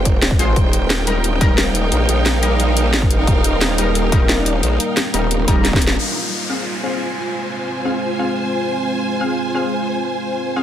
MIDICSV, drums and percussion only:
0, 0, Header, 1, 2, 480
1, 0, Start_track
1, 0, Key_signature, -4, "minor"
1, 0, Tempo, 338983
1, 797, Time_signature, 4, 2, 24, 8
1, 15051, End_track
2, 0, Start_track
2, 0, Title_t, "Drums"
2, 77, Note_on_c, 9, 36, 69
2, 77, Note_on_c, 9, 42, 94
2, 218, Note_off_c, 9, 42, 0
2, 219, Note_off_c, 9, 36, 0
2, 317, Note_on_c, 9, 38, 127
2, 317, Note_on_c, 9, 42, 76
2, 437, Note_on_c, 9, 36, 110
2, 459, Note_off_c, 9, 38, 0
2, 459, Note_off_c, 9, 42, 0
2, 557, Note_on_c, 9, 42, 89
2, 579, Note_off_c, 9, 36, 0
2, 699, Note_off_c, 9, 42, 0
2, 797, Note_on_c, 9, 36, 124
2, 797, Note_on_c, 9, 42, 75
2, 939, Note_off_c, 9, 36, 0
2, 939, Note_off_c, 9, 42, 0
2, 1037, Note_on_c, 9, 42, 93
2, 1179, Note_off_c, 9, 42, 0
2, 1277, Note_on_c, 9, 38, 124
2, 1277, Note_on_c, 9, 42, 76
2, 1419, Note_off_c, 9, 38, 0
2, 1419, Note_off_c, 9, 42, 0
2, 1516, Note_on_c, 9, 42, 91
2, 1658, Note_off_c, 9, 42, 0
2, 1758, Note_on_c, 9, 42, 75
2, 1899, Note_off_c, 9, 42, 0
2, 1997, Note_on_c, 9, 36, 111
2, 1997, Note_on_c, 9, 42, 90
2, 2139, Note_off_c, 9, 36, 0
2, 2139, Note_off_c, 9, 42, 0
2, 2236, Note_on_c, 9, 38, 122
2, 2236, Note_on_c, 9, 42, 79
2, 2377, Note_off_c, 9, 38, 0
2, 2377, Note_off_c, 9, 42, 0
2, 2476, Note_on_c, 9, 42, 89
2, 2618, Note_off_c, 9, 42, 0
2, 2717, Note_on_c, 9, 42, 77
2, 2859, Note_off_c, 9, 42, 0
2, 2957, Note_on_c, 9, 42, 91
2, 3099, Note_off_c, 9, 42, 0
2, 3197, Note_on_c, 9, 38, 118
2, 3197, Note_on_c, 9, 42, 78
2, 3339, Note_off_c, 9, 38, 0
2, 3339, Note_off_c, 9, 42, 0
2, 3437, Note_on_c, 9, 42, 92
2, 3579, Note_off_c, 9, 42, 0
2, 3678, Note_on_c, 9, 42, 76
2, 3819, Note_off_c, 9, 42, 0
2, 3918, Note_on_c, 9, 42, 89
2, 4059, Note_off_c, 9, 42, 0
2, 4157, Note_on_c, 9, 38, 117
2, 4157, Note_on_c, 9, 42, 74
2, 4276, Note_on_c, 9, 36, 101
2, 4299, Note_off_c, 9, 38, 0
2, 4299, Note_off_c, 9, 42, 0
2, 4398, Note_on_c, 9, 42, 95
2, 4418, Note_off_c, 9, 36, 0
2, 4539, Note_off_c, 9, 42, 0
2, 4637, Note_on_c, 9, 36, 117
2, 4637, Note_on_c, 9, 42, 77
2, 4778, Note_off_c, 9, 36, 0
2, 4779, Note_off_c, 9, 42, 0
2, 4877, Note_on_c, 9, 42, 98
2, 5018, Note_off_c, 9, 42, 0
2, 5118, Note_on_c, 9, 38, 113
2, 5118, Note_on_c, 9, 42, 83
2, 5259, Note_off_c, 9, 38, 0
2, 5259, Note_off_c, 9, 42, 0
2, 5357, Note_on_c, 9, 42, 98
2, 5498, Note_off_c, 9, 42, 0
2, 5598, Note_on_c, 9, 42, 74
2, 5739, Note_off_c, 9, 42, 0
2, 5837, Note_on_c, 9, 36, 110
2, 5838, Note_on_c, 9, 42, 92
2, 5979, Note_off_c, 9, 36, 0
2, 5979, Note_off_c, 9, 42, 0
2, 6078, Note_on_c, 9, 38, 114
2, 6078, Note_on_c, 9, 42, 79
2, 6219, Note_off_c, 9, 38, 0
2, 6219, Note_off_c, 9, 42, 0
2, 6317, Note_on_c, 9, 42, 93
2, 6459, Note_off_c, 9, 42, 0
2, 6557, Note_on_c, 9, 42, 81
2, 6699, Note_off_c, 9, 42, 0
2, 6797, Note_on_c, 9, 42, 99
2, 6939, Note_off_c, 9, 42, 0
2, 7036, Note_on_c, 9, 38, 118
2, 7036, Note_on_c, 9, 42, 82
2, 7178, Note_off_c, 9, 38, 0
2, 7178, Note_off_c, 9, 42, 0
2, 7277, Note_on_c, 9, 42, 99
2, 7419, Note_off_c, 9, 42, 0
2, 7518, Note_on_c, 9, 42, 83
2, 7659, Note_off_c, 9, 42, 0
2, 7757, Note_on_c, 9, 36, 63
2, 7757, Note_on_c, 9, 42, 94
2, 7899, Note_off_c, 9, 36, 0
2, 7899, Note_off_c, 9, 42, 0
2, 7997, Note_on_c, 9, 38, 70
2, 7997, Note_on_c, 9, 42, 82
2, 8117, Note_on_c, 9, 36, 104
2, 8138, Note_off_c, 9, 38, 0
2, 8138, Note_off_c, 9, 42, 0
2, 8157, Note_on_c, 9, 38, 88
2, 8237, Note_on_c, 9, 42, 97
2, 8259, Note_off_c, 9, 36, 0
2, 8299, Note_off_c, 9, 38, 0
2, 8317, Note_on_c, 9, 38, 99
2, 8379, Note_off_c, 9, 42, 0
2, 8459, Note_off_c, 9, 38, 0
2, 15051, End_track
0, 0, End_of_file